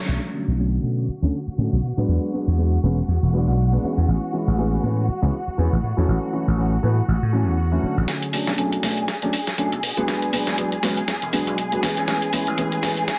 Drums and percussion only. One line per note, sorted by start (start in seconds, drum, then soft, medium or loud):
8.08 snare soft
8.08 closed hi-hat medium
8.22 closed hi-hat soft
8.33 open hi-hat loud
8.47 snare soft
8.47 closed hi-hat soft
8.58 closed hi-hat medium
8.72 closed hi-hat soft
8.83 snare soft
8.83 open hi-hat loud
8.97 closed hi-hat soft
9.08 snare medium
9.08 closed hi-hat medium
9.22 closed hi-hat soft
9.33 open hi-hat loud
9.47 snare soft
9.47 closed hi-hat soft
9.58 closed hi-hat medium
9.72 closed hi-hat soft
9.83 open hi-hat loud
9.97 closed hi-hat soft
10.08 snare medium
10.08 closed hi-hat medium
10.22 closed hi-hat soft
10.33 open hi-hat loud
10.47 snare soft
10.47 closed hi-hat soft
10.58 closed hi-hat medium
10.72 closed hi-hat soft
10.83 snare medium
10.83 open hi-hat loud
10.97 closed hi-hat soft
11.08 snare medium
11.08 closed hi-hat medium
11.22 closed hi-hat soft
11.33 open hi-hat loud
11.47 closed hi-hat soft
11.58 closed hi-hat medium
11.72 closed hi-hat soft
11.83 snare medium
11.83 open hi-hat loud
11.97 closed hi-hat soft
12.08 snare medium
12.08 closed hi-hat medium
12.22 closed hi-hat soft
12.33 open hi-hat loud
12.47 closed hi-hat soft
12.58 closed hi-hat medium
12.72 closed hi-hat soft
12.83 snare medium
12.83 open hi-hat loud
12.97 closed hi-hat soft
13.08 snare medium
13.08 closed hi-hat medium